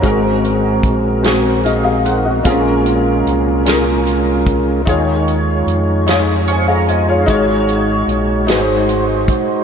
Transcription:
<<
  \new Staff \with { instrumentName = "Tonewheel organ" } { \time 6/8 \key aes \mixolydian \tempo 4. = 50 << { r2 <aes' f''>16 <ges' ees''>16 <ees' c''>16 bes'16~ | bes'16 r2 r8. | r2 <f'' des'''>16 <des'' bes''>16 <c'' aes''>16 <aes' f''>16~ | <aes' f''>16 r2 r8. | } \\ { <aes c' ges' a' bes'>2. | <aes des' f' bes'>2. | <ges aes ees' f' des''>2. | <aes ees' ges' c'' des''>4. <aes ees' ges' ces'' c''>4. | } >> }
  \new Staff \with { instrumentName = "Upright piano" } { \time 6/8 \key aes \mixolydian << { <des'' bes''>16 r4. r16 <ges' ees''>16 <aes' f''>16 <bes' ges''>16 <ges' ees''>16~ | <ges' ees''>16 r2 r8. | r2 <c'' aes''>16 <aes' f''>16 ees''16 <f' des''>16~ | <f' des''>16 r2 r8. | } \\ { <aes, c' ges' aes' bes'>4. <c' ges' aes' bes'>4. | <bes, c' des' f' aes' bes'>4. <des' f' aes' bes'>4. | <ees ees' f' aes' des''>4. <ees' f' aes' des''>4. | <aes, ees' ges' aes' des''>4. <aes, ees' ges' aes' ces'' c''>4. | } >> }
  \new Staff \with { instrumentName = "Fingered electric bass" } { \clef bass \time 6/8 \key aes \mixolydian aes,,4 bes,,2 | bes,,4 c,2 | ees,4 f,2 | aes,,4 bes,,8 aes,,4 r8 | }
  \new DrumStaff \with { instrumentName = "Drums" } \drummode { \time 6/8 <hh bd>8 hh8 <hh bd>8 <hh sn>8 hh8 hh8 | <hh bd>8 hh8 hh8 <hh sn>8 hh8 <hh bd>8 | <hh bd>8 hh8 hh8 <hh sn>8 hh8 hh8 | <hh bd>8 hh8 hh8 <hh sn>8 hh8 <hh bd>8 | }
>>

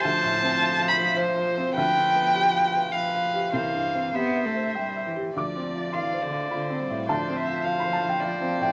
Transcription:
<<
  \new Staff \with { instrumentName = "Violin" } { \time 3/4 \key d \dorian \tempo 4 = 104 a''4. b''8 c''4 | g''2 f''4 | f''4 e''4. r8 | d''4 f''8 c''4. |
d''8 e''8 f''4 d''4 | }
  \new Staff \with { instrumentName = "Viola" } { \time 3/4 \key d \dorian c''2. | b'2 b'4 | c''4 c''4. r8 | d''2. |
c''8 c''2~ c''8 | }
  \new Staff \with { instrumentName = "Felt piano" } { \time 3/4 \key d \dorian << { r2. | r2. | r2. | d'''4 c'''4 b''4 |
a''4~ a''16 b''16 a''16 g''16 f''8. g''16 | } \\ { \tuplet 3/2 { d,8 a,8 c'8 f'8 f''8 c''8 f''8 f'8 c'8 } | \tuplet 3/2 { d,8 d8 b8 g'8 f''8 b'8 g''8 f''8 g'8 } | \tuplet 3/2 { c,8 g,8 c'8 g'8 e''8 c''8 g''8 e''8 g'8 } | \tuplet 3/2 { d,8 c'8 f'8 f''8 c''8 f''8 f'8 c'8 a,8 } |
\tuplet 3/2 { d,8 c'8 f'8 f''8 c''8 f''8 f'8 c'8 a,8 } | } >> }
  \new Staff \with { instrumentName = "Cello" } { \clef bass \time 3/4 \key d \dorian f2. | f2 f4 | e4 b8 a8 g8 e8 | f4 e8 d8 d8 g8 |
f2. | }
>>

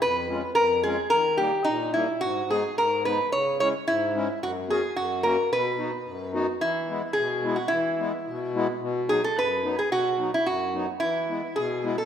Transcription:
<<
  \new Staff \with { instrumentName = "Resonator guitar played with a steel bar" } { \time 2/4 \key b \major \tempo 4 = 109 b'4 ais'8 gis'8 | ais'8 g'8 dis'8 e'8 | fis'8 gis'8 ais'8 b'8 | cis''8 cis''8 e'4 |
fis'8 gis'8 fis'8 ais'8 | b'4. r8 | \key e \major e'4 gis'8. fis'16 | e'4. r8 |
r8 gis'16 a'16 b'8. gis'16 | fis'8. e'16 fis'8. r16 | e'4 gis'8. a'16 | }
  \new Staff \with { instrumentName = "Accordion" } { \time 2/4 \key b \major << { r8 <gis cis' eis'>8 r8 <gis cis' eis'>8 | r8 <g ais dis'>8 r8 <g ais dis'>8 | r8 <gis b dis'>8 r8 <gis b dis'>8 | r8 <gis cis' e'>8 r8 <gis cis' e'>8 |
r8 <b cis' fis'>8 r8 <ais cis' fis'>8 | r8 <b dis' fis'>8 r8 <b dis' fis'>8 | \key e \major r8 <gis b e'>8 r8 <gis b e'>8 | r8 <gis b e'>8 r8 <gis b e'>8 |
r8 <fis b dis'>8 r8 <fis b dis'>8 | r8 <fis b dis'>8 r8 <fis b dis'>8 | r8 <gis b e'>8 r8 <gis b e'>8 | } \\ { eis,4 eis,4 | dis4 ais,4 | gis,4 gis,4 | cis4 gis,4 |
fis,4 fis,4 | b,4 fis,4 | e4 b,4 | e4 b,4 |
b,4 fis,4 | b,4 fis,4 | e4 b,4 | } >> }
>>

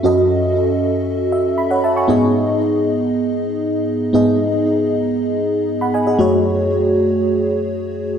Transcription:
<<
  \new Staff \with { instrumentName = "FM electric piano" } { \time 4/4 \key fis \dorian \tempo 4 = 117 << { r2 r8 e''8 b''16 <cis'' fis''>16 <e'' a''>16 <gis'' cis'''>16~ | <gis'' cis'''>16 r2. r8. | r2. r16 <fis'' b''>16 <dis'' gis''>16 <gis' dis''>16~ | <gis' dis''>16 r2. r8. | } \\ { <cis' fis' a' dis''>2~ <cis' fis' a' dis''>8 r4. | <b dis' gis' dis''>1 | <b dis' gis' dis''>1 | <a fis' gis' cis''>1 | } >> }
  \new Staff \with { instrumentName = "FM electric piano" } { \clef bass \time 4/4 \key fis \dorian fis,1 | gis,1 | gis,1 | fis,1 | }
>>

